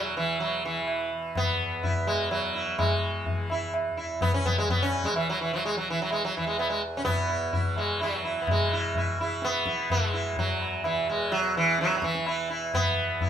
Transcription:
0.00 1.42 E2 medium
0.00 2.04 B2 soft
0.00 0.17 E3 medium
0.00 0.17 F#3 medium
0.17 0.80 E3 medium
0.17 0.40 E3 medium
0.40 0.65 F#3 medium
0.40 tabla na medium
0.65 1.09 E3 medium
0.80 2.65 E3 medium
0.88 tabla na medium
1.35 2.07 B3 medium
1.35 tabla na medium
1.35 tabla ge medium
1.43 3.88 E2 medium
1.83 2.06 E4 soft
1.83 tabla tin medium
1.83 tabla ge medium
2.04 4.50 B2 soft
2.04 2.31 G#3 medium
2.04 tabla na medium
2.31 2.78 F#3 medium
2.31 tabla na medium
2.55 2.77 E4 soft
2.65 3.27 E3 soft
2.78 3.46 G#3 medium
2.78 tabla na medium
2.78 tabla ge medium
3.26 5.12 E3 medium
3.26 tabla tin medium
3.26 tabla ge medium
3.50 3.73 E4 soft
3.50 tabla na medium
3.74 tabla na medium
3.89 6.36 E2 medium
3.97 4.19 E4 soft
4.21 4.34 B3 medium
4.21 tabla na medium
4.21 tabla ge medium
4.34 4.46 C#4 medium
4.45 4.58 B3 medium
4.45 tabla ge soft
4.50 6.97 B2 medium
4.58 4.70 G#3 medium
4.69 4.82 B3 medium
4.69 tabla tin medium
4.69 tabla ge medium
4.82 5.06 C#4 medium
4.93 tabla na medium
5.04 5.16 G#3 medium
5.04 tabla ke medium
5.12 5.75 E3 medium
5.12 5.28 E3 medium
5.12 tabla na medium
5.30 5.41 F#3 medium
5.41 5.53 E3 medium
5.53 5.65 F#3 medium
5.63 5.77 G#3 medium
5.63 tabla tin medium
5.75 7.60 E3 medium
5.75 5.89 F#3 medium
5.90 6.01 E3 medium
6.02 6.12 F#3 medium
6.11 6.24 G#3 medium
6.11 tabla na medium
6.25 6.36 F#3 medium
6.35 10.32 E2 medium
6.35 6.46 E3 medium
6.35 tabla na medium
6.47 6.59 G#3 medium
6.58 6.69 B3 medium
6.58 tabla na medium
6.70 6.81 G#3 medium
6.97 8.49 B2 medium
6.97 7.04 C#4 medium
7.05 7.79 B3 medium
7.05 7.27 E4 soft
7.05 tabla na medium
7.05 tabla ge medium
7.29 7.51 E4 soft
7.53 7.75 E4 soft
7.53 tabla tin medium
7.53 tabla ge medium
7.60 8.22 E3 medium
7.77 8.02 G#3 medium
7.77 tabla na medium
8.00 8.41 F#3 medium
8.00 8.23 E4 soft
8.00 tabla na medium
8.22 9.09 E3 medium
8.22 8.46 E4 soft
8.42 8.48 B3 soft
8.47 10.94 B2 soft
8.47 9.17 G#3 medium
8.47 tabla na medium
8.47 tabla ge medium
8.73 8.94 E4 soft
8.95 9.19 E4 soft
8.95 tabla tin medium
8.95 tabla ge medium
9.09 9.72 E3 medium
9.19 9.42 E4 soft
9.19 tabla na medium
9.42 9.91 B3 loud
9.42 tabla te medium
9.54 tabla te medium
9.66 9.89 E4 soft
9.66 tabla ke medium
9.72 11.55 E3 soft
9.79 tabla te medium
9.90 10.38 G#3 medium
9.90 tabla na medium
9.90 tabla ge medium
10.14 10.36 E4 soft
10.33 12.79 E2 medium
10.37 10.85 F#3 medium
10.37 tabla tin medium
10.37 tabla ge medium
10.61 tabla na medium
10.84 11.09 E3 medium
10.84 tabla na medium
10.94 13.30 B2 medium
11.08 11.31 G#3 medium
11.08 tabla na medium
11.32 11.56 F#3 medium
11.32 tabla tin medium
11.55 12.18 E3 medium
11.55 11.81 E3 medium
11.79 11.95 F#3 medium
11.79 tabla te medium
11.90 tabla te medium
11.97 12.03 F#3 medium
12.02 12.47 E3 medium
12.02 tabla ke medium
12.15 13.30 E3 medium
12.15 tabla te medium
12.26 12.49 E4 soft
12.26 tabla na medium
12.50 12.72 E4 soft
12.74 13.30 B3 medium
12.74 tabla na medium
12.74 tabla ge medium
12.79 13.30 E2 medium
13.21 13.30 E4 soft
13.21 tabla tin medium
13.21 tabla ge medium

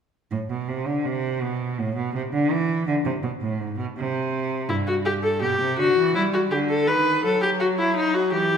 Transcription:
0.31 0.39 A2 medium
0.50 0.70 B2 medium
0.69 0.88 C3 medium
0.86 1.07 D3 medium
1.05 1.43 C3 medium
1.42 1.80 B2 medium
1.78 1.95 A2 medium
1.96 2.13 B2 medium
2.14 2.21 C3 medium
2.32 2.53 D3 medium
2.51 2.87 E3 medium
2.87 2.95 D3 medium
3.05 3.13 C3 medium
3.23 3.31 B2 medium
3.41 3.61 A2 medium
3.60 3.77 G#2 medium
3.78 3.85 B2 medium
3.96 4.70 C3 medium
4.69 5.43 G2 medium
4.69 4.76 E4 medium
4.87 4.94 F#4 medium
5.05 5.13 G4 medium
5.23 5.41 A4 medium
5.42 5.59 B2 medium
5.42 5.78 G4 medium
5.60 5.80 C3 medium
5.78 5.96 D3 soft
5.78 6.14 F#4 medium
5.96 6.16 E3 medium
6.14 6.50 G3 medium
6.14 6.22 E4 medium
6.33 6.41 F#4 medium
6.51 6.89 D3 medium
6.51 6.58 G4 medium
6.69 6.89 A4 medium
6.87 7.25 D#3 medium
6.87 7.23 B4 medium
7.23 8.34 F#3 medium
7.23 7.41 A4 medium
7.42 7.49 G4 medium
7.60 7.67 F#4 medium
7.79 7.95 E4 medium
7.96 8.15 D#4 medium
8.14 8.32 F#4 medium
8.32 8.57 E3 medium
8.32 8.57 G4 medium

